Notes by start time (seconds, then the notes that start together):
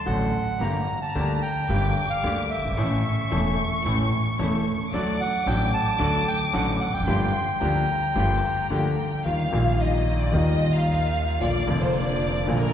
Already playing: A5 C6
0.06 A1 A2 D3 F#3 A3 F#4 F#5
0.60 G1 G2 D3 G3 A#3 D4 G4 A#5
1.02 A5
1.15 D2 D3 G3 A#3 D4 G4
1.35 A5
1.42 G5
1.69 G1 G2 D3 G3 A#3 D4 G4 D6
2.10 F5
2.23 D2 D3 G3 A#3 D4 G4
2.50 E5
2.57 F#1
2.64 G1
2.70 G#1
2.77 A1 A2 E3 A3 C#4 E4 A4 C#6
3.32 E1 E2 E3 A3 C#4 E4 A4
3.85 A1 A2 E3 A3 C#4 E4 A4
4.39 E1 E2 E3 A3 C#4 E4 A4
4.92 D2 D3 F#3 A3 D4 F#4 A4 D5 D6
5.21 F#5
5.46 A1 A2 F#3 A3 D4 F#4 A4 G5
5.74 A5
5.99 D2 D3 F#3 A3 D4 F#4 A4
6.28 G5
6.53 A1 A2 F#3 A3 D4 F#4 A4 F#5
6.80 F#5
6.87 E1 E2
6.93 F1 F2 G5
7.00 F#1 F#2
7.07 G1 G2 F3 A#3 D4 F4 G4 C6
7.61 D2 D3 F3 A#3 D4 F4 G4 A#5
8.16 G1 G2 F3 A#3 D4 F4 G4 C6
8.36 A5
8.42 A#5
8.70 D2 D3 F3 A#3 D4 F4 G4 G5
9.25 D#2 D#3 G3 A#3 D#4 F4 F5
9.50 A#1 A#2 D#3 G3 A#3 D#4 F4
9.80 D#5
10.21 D5
10.31 D#2 D#3 G3 A#3 D#4 F4 D#5
10.35 F4
10.74 F5
11.40 A#1 A#2 D3 F3 A#3 D4 F4 D5
11.66 F1 F2 D3 F3 A#3 D4 F4
11.82 C5
11.96 D5
12.46 A#1 A#2 D3 F3 A#3 D4 F4 A#4
12.50 F4